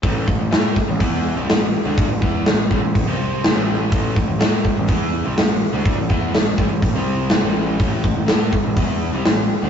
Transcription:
0.03 picked electric bass A1, overdriven electric guitar A2 E3 A3, kick, open hi-hat
0.27 picked electric bass A1, overdriven electric guitar A2 E3, kick
0.39 picked electric bass A1, overdriven electric guitar A2 E3
0.51 picked electric bass A2, overdriven electric guitar A3 E4 A4, snare, open hi-hat
0.76 muted overdriven electric guitar stroke, muted picked electric bass stroke, kick, snare
0.89 picked electric bass A1, overdriven electric guitar A2 E3
1.00 picked electric bass E2, overdriven electric guitar E3 B3 E4, kick, open hi-hat
1.14 snare
1.36 picked electric bass C2, overdriven electric guitar C3 G3
1.47 picked electric bass A1, overdriven electric guitar A2 E3, snare, open hi-hat
1.85 picked electric bass D2, overdriven electric guitar D3 A3 D4
1.98 kick, open hi-hat
2.10 picked electric bass A1, overdriven electric guitar A2 E3
2.21 picked electric bass E2, overdriven electric guitar E3 B3 E4, kick
2.46 picked electric bass A1, overdriven electric guitar A2 E3, snare, open hi-hat
2.71 picked electric bass A1, overdriven electric guitar A2 E3, kick
2.82 picked electric bass A1, overdriven electric guitar A2 E3
2.94 picked electric bass A1, overdriven electric guitar A2 E3, kick, open hi-hat
3.07 picked electric bass C2, overdriven electric guitar C3 G3 C4
3.44 snare, open hi-hat
3.56 picked electric bass A1, overdriven electric guitar A2 E3 A3
3.92 picked electric bass A1, overdriven electric guitar A2 E3 A3, kick, open hi-hat
4.15 picked electric bass A1, overdriven electric guitar A2 E3, kick
4.28 picked electric bass A1, overdriven electric guitar A2 E3
4.40 picked electric bass A2, overdriven electric guitar A3 E4 A4, snare, open hi-hat
4.64 muted overdriven electric guitar stroke, muted picked electric bass stroke, kick
4.77 picked electric bass A1, overdriven electric guitar A2 E3
4.87 picked electric bass E2, overdriven electric guitar E3 B3 E4, kick, open hi-hat
5.25 picked electric bass C2, overdriven electric guitar C3 G3
5.37 picked electric bass A1, overdriven electric guitar A2 E3, snare, open hi-hat
5.73 picked electric bass D2, overdriven electric guitar D3 A3 D4
5.85 kick, open hi-hat
5.97 picked electric bass A1, overdriven electric guitar A2 E3
6.09 picked electric bass E2, overdriven electric guitar E3 B3 E4, kick
6.34 picked electric bass A1, overdriven electric guitar A2 E3, snare, open hi-hat
6.57 picked electric bass A1, overdriven electric guitar A2 E3, kick
6.70 picked electric bass A1, overdriven electric guitar A2 E3
6.82 picked electric bass A1, overdriven electric guitar A2 E3, kick, open hi-hat
6.94 picked electric bass C2, overdriven electric guitar C3 G3 C4
7.30 snare, open hi-hat
7.43 picked electric bass A1, overdriven electric guitar A2 E3 A3
7.80 picked electric bass A1, overdriven electric guitar A2 E3 A3, kick, open hi-hat
8.03 picked electric bass A1, overdriven electric guitar A2 E3, kick
8.15 picked electric bass A1, overdriven electric guitar A2 E3
8.26 picked electric bass A2, overdriven electric guitar A3 E4 A4, snare, open hi-hat
8.53 muted overdriven electric guitar stroke, muted picked electric bass stroke, kick
8.64 picked electric bass A1, overdriven electric guitar A2 E3
8.76 picked electric bass E2, overdriven electric guitar E3 B3 E4, kick, open hi-hat
9.13 picked electric bass C2, overdriven electric guitar C3 G3
9.25 picked electric bass A1, overdriven electric guitar A2 E3, snare, open hi-hat
9.62 picked electric bass D2, overdriven electric guitar D3 A3 D4

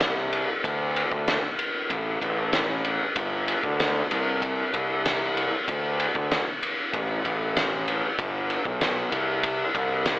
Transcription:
Already playing: picked electric bass C2
0.00 snare, ride
0.33 ride
0.64 picked electric bass D2, kick, ride
0.96 ride
1.11 picked electric bass D2, kick
1.28 snare, ride
1.59 ride
1.90 picked electric bass A1, kick, ride
2.21 picked electric bass A1, kick, ride
2.53 snare, ride
2.85 ride
3.16 picked electric bass G1, kick, ride
3.48 ride
3.63 picked electric bass D2, kick
3.80 snare, ride
4.11 picked electric bass C2, ride
4.42 kick, ride
4.74 picked electric bass C2, kick, ride
5.06 snare, ride
5.37 ride
5.68 picked electric bass D2, kick, ride
6.00 ride
6.15 picked electric bass D2, kick
6.31 snare, ride
6.63 ride
6.93 picked electric bass A1, kick, ride
7.25 picked electric bass A1, kick, ride
7.57 snare, ride
7.88 ride
8.19 picked electric bass G1, kick, ride
8.50 ride
8.65 picked electric bass B1, kick
8.81 snare, ride
9.12 picked electric bass C2, ride
9.43 kick, ride
9.74 picked electric bass C2, kick, ride
10.06 snare, ride

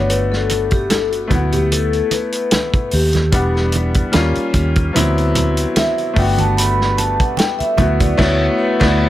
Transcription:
Already playing: fingered electric bass G1, grand piano A3 B3 D4 F#4, vibraphone C#5
0.09 vibraphone B4, closed hi-hat
0.32 vibraphone A4, snare
0.50 closed hi-hat, muted conga
0.71 vibraphone G4, kick, closed hi-hat
0.90 vibraphone A4, snare, closed hi-hat, high conga
1.11 vibraphone F#4, closed hi-hat
1.28 fingered electric bass D2, grand piano A3 B3 E4, kick, closed hi-hat, low conga
1.34 grand piano F#5
1.52 vibraphone G4, closed hi-hat, low conga
1.72 vibraphone A4, closed hi-hat, muted conga
1.93 closed hi-hat
2.11 vibraphone B4, closed hi-hat, muted conga
2.32 closed hi-hat
2.51 snare, closed hi-hat, high conga
2.73 kick, closed hi-hat
2.91 fingered electric bass D#2, vibraphone G4, open hi-hat
3.13 snare, closed hi-hat, high conga
3.32 fingered electric bass E1, french horn section E3 D4 E4 G4, grand piano G3 B3 D4 F#5, kick, closed hi-hat
3.56 snare
3.72 closed hi-hat, muted conga
3.94 kick, closed hi-hat
4.12 fingered electric bass D#2, french horn section D#3 C#4 F4, grand piano G3 A#3 C#4 F4, snare, closed hi-hat, high conga
4.35 muted fingered electric bass stroke, closed hi-hat
4.54 fingered electric bass D#2, kick, closed hi-hat
4.76 kick, closed hi-hat
4.93 fingered electric bass D2, french horn section C3 D3 E4 F#4 B4, grand piano F#3 B3 C4 E4, closed hi-hat, muted conga, low conga
5.18 closed hi-hat
5.35 closed hi-hat, muted conga, low conga
5.57 closed hi-hat
5.76 vibraphone E5, snare, closed hi-hat, high conga
5.98 closed hi-hat
6.14 fingered electric bass G1, french horn section G3 A4 B4, grand piano A3 B3 D4, kick, open hi-hat
6.18 grand piano F#4, vibraphone G5
6.38 vibraphone A5, closed hi-hat, high conga
6.57 vibraphone B5, closed hi-hat
6.81 snare
6.98 vibraphone A5, closed hi-hat, muted conga
7.20 vibraphone F#5, kick, closed hi-hat
7.37 vibraphone G5, snare, closed hi-hat, high conga
7.59 vibraphone E5, muted fingered electric bass stroke, closed hi-hat
7.77 fingered electric bass D2, french horn section D3 B3 E4 F#4, grand piano A3 B3 E4 F#4, kick, closed hi-hat, low conga
8.00 vibraphone D5, kick, closed hi-hat, low conga
8.18 fingered electric bass D2, grand piano A3 B3 E4 F#4, vibraphone C#5, kick, snare, crash
8.59 vibraphone B4
8.80 fingered electric bass D2, grand piano A3 B3 E4 F#4, vibraphone D5, kick, snare, crash
8.99 french horn section A3 C#4 G4, vibraphone C#5

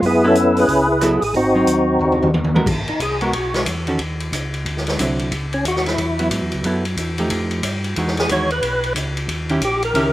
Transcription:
0.02 tonewheel organ F#2 B3 E4 G#4, kick, open hi-hat
0.24 hollow-body jazz guitar F#3 B3 E4 A4, tonewheel organ C#4 E4 A4
0.35 closed hi-hat
0.57 tonewheel organ E4 G#4 B4, open hi-hat
0.68 tonewheel organ C#2, kick, open hi-hat
0.92 tonewheel organ B4
1.01 hollow-body jazz guitar F#3 B3 E4 A4, tonewheel organ G#4, cross-stick, closed hi-hat
1.22 tonewheel organ A1 G#4, open hi-hat
1.34 tonewheel organ G#1 C4 D#4 F#4, kick, open hi-hat
1.55 hollow-body jazz guitar F#3 C4 D#4
1.66 tonewheel organ D#2, closed hi-hat
2.00 tonewheel organ D#2, floor tom
2.12 floor tom
2.23 floor tom
2.34 high tom
2.44 high tom
2.54 hollow-body jazz guitar G#3 B3 F#4 A#4, high tom
2.66 tonewheel organ G#1, kick, crash
2.87 tonewheel organ G#1 D#4, ride
3.00 tonewheel organ C2 G#4, kick, hi-hat pedal, ride
3.21 hollow-body jazz guitar G#3 B3 F#4 A#4, tonewheel organ F#4, ride
3.33 tonewheel organ B1, kick, ride
3.54 snare, ride
3.66 tonewheel organ E2, kick, hi-hat pedal, ride
3.87 hollow-body jazz guitar D#3 C#4 F#4 A4, ride
3.99 tonewheel organ D#2, kick, ride
4.20 ride
4.32 tonewheel organ C#2, kick, hi-hat pedal, ride
4.54 ride
4.65 tonewheel organ D2, kick, ride
4.77 snare
4.87 snare, ride
4.99 tonewheel organ C2, hollow-body jazz guitar D3 F#3 C4 E4, kick, hi-hat pedal, ride
5.19 ride
5.32 tonewheel organ C#2, kick, ride
5.53 tonewheel organ C#4, ride
5.65 tonewheel organ D#2 F#4, kick, hi-hat pedal, ride
5.76 snare
5.86 tonewheel organ E4, snare, ride
5.98 tonewheel organ E2, kick, ride
6.19 hollow-body jazz guitar F#3 B3 E4, ride
6.31 tonewheel organ G#2, kick, hi-hat pedal, ride
6.42 tonewheel organ E2
6.52 tonewheel organ C#2, ride
6.64 tonewheel organ F#2, hollow-body jazz guitar F#3 B3 E4 A4, kick, ride
6.85 ride
6.97 tonewheel organ E2, kick, hi-hat pedal, ride
7.18 hollow-body jazz guitar F3 A3 D#4 G4, ride
7.30 tonewheel organ F2, kick, ride
7.51 ride
7.63 tonewheel organ G2, kick, hi-hat pedal, ride
7.84 ride
7.96 tonewheel organ E2, hollow-body jazz guitar E3 G#3 D#4 F#4, kick, ride
8.07 snare
8.17 tonewheel organ G#4, snare, ride
8.29 tonewheel organ D#2 C#5, hollow-body jazz guitar E3 G#3 D#4 F#4, kick, hi-hat pedal, ride
8.50 tonewheel organ B4, ride
8.62 tonewheel organ B1, kick, ride
8.84 ride
8.95 tonewheel organ C#2, kick, hi-hat pedal, ride
9.17 ride
9.28 tonewheel organ D#2, kick, ride
9.49 hollow-body jazz guitar D#3 C#4 E4 G4, ride
9.61 tonewheel organ A#1 G4, kick, hi-hat pedal, ride
9.82 tonewheel organ A#4, ride
9.94 tonewheel organ C#2, hollow-body jazz guitar D#3 C#4 E4 G4, kick, ride

